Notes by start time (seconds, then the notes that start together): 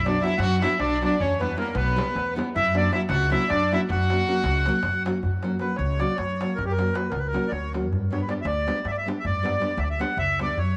Already playing: B1
0.05 F#3 B3 D4 F#4 D5, darbuka tek
0.15 darbuka tek
0.22 F#3 B3 D4 E4 F#4 E5, darbuka tek
0.32 darbuka tek
0.38 F#2 F#4 F#5, darbuka tek
0.62 F#3 B3 D4 E4 F#4 E5, darbuka tek
0.80 B1 D4 D5, darbuka tek
1.02 F#3 B3 D4 F#4 D5, darbuka tek
1.20 E2 C#4 C#5, darbuka dum
1.40 G3 B3 E4 G4 B4, darbuka tek
1.49 darbuka tek
1.56 G3 A#3 B3 E4 G4 A#4, darbuka tek
1.67 darbuka tek
1.75 B1 B3 B4, darbuka tek
1.96 G3 B3 E4 G4, darbuka tek
2.15 E2, darbuka tek
2.35 G3 B3 E4 G4, darbuka tek
2.56 F#2 E4 E5, darbuka dum
2.73 F#3 A#3 C#4 F#4 D5, darbuka tek
2.77 D4
2.91 F#3 A#3 C#4 E4 F#4 E5, darbuka tek
3.01 darbuka tek
3.09 C#2 F#4 F#5, darbuka tek
3.30 F#3 A#3 C#4 E4 F#4 E5, darbuka tek
3.49 F#2 D4 D5, darbuka tek
3.72 F#3 A#3 C#4 E4 F#4 E5, darbuka tek
3.90 F#2 F#4 F#5, darbuka dum
4.10 F#3 A#3 C#4 F#4, darbuka tek
4.27 F#3 A#3 C#4 F#4
4.44 C#2, darbuka tek
4.55 darbuka tek
4.66 F#3 A#3 C#4 F#4, darbuka tek
4.75 darbuka tek
4.83 F#2, darbuka tek, darbuka dum
4.94 darbuka tek
5.05 F#3 A#3 C#4 F#4, darbuka tek
5.23 F#2, darbuka dum
5.43 F#3 A#3 C#4 F#4, darbuka tek
5.59 F#3 A#3 C#4 F#4 B4, darbuka tek
5.76 C#2 C#5, darbuka tek
5.99 F#3 A#3 C#4 F#4 D5, darbuka tek
6.15 F#2 C#5, darbuka tek
6.30 darbuka tek
6.40 F#3 A#3 C#4 F#4, darbuka tek
6.56 F#2 A#4, darbuka dum
6.65 G4
6.71 A#4
6.77 F#3 A#3 C#4 F#4, darbuka tek
6.93 F#3 A#3 C#4 F#4 B4, darbuka tek
7.09 C#2 A#4, darbuka tek
7.18 B4
7.26 A#4
7.33 F#3 A#3 C#4 F#4, darbuka tek
7.44 D5, darbuka tek
7.51 D2 C#5, darbuka tek
7.63 darbuka tek
7.73 F#3 A#3 C#4 F#4, darbuka tek
7.91 G2, darbuka dum
8.11 G3 B3 D4 G4 C#5, darbuka tek
8.21 B4
8.29 G3 B3 D4 G4 D5, darbuka tek
8.41 D2 E5, darbuka tek
8.47 D5
8.67 G3 B3 D4 G4, darbuka tek
8.77 darbuka tek
8.85 G2 E5, darbuka tek
8.91 D5
8.97 E5, darbuka tek
9.06 G3 B3 D4 G4, darbuka tek
9.20 E5
9.25 G2 D5, darbuka dum
9.43 G3 B3 D4 G4, darbuka tek
9.60 G3 B3 D4 G4, darbuka tek
9.70 darbuka tek
9.77 D2 E5, darbuka tek
9.83 D5
9.90 E5
9.99 G3 B3 D4 G4 F#5, darbuka tek
10.09 darbuka tek
10.17 C#2 E5, darbuka tek, darbuka dum
10.39 G3 B3 D4 G4 D5, darbuka tek
10.49 darbuka tek
10.58 F#2 C#5, darbuka dum